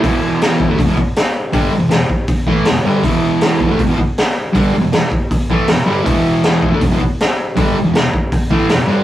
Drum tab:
HH |o-o-o-o-|o-o-o-o-|o-o-o-o-|o-o-o-o-|
SD |--o---o-|--o---o-|--o---o-|--o---o-|
BD |o--ooo--|o--ooo--|o--ooo--|o--ooo--|

HH |o-o-o-o-|o-o-o-o-|
SD |--o---o-|--o---o-|
BD |o--ooo--|o--ooo--|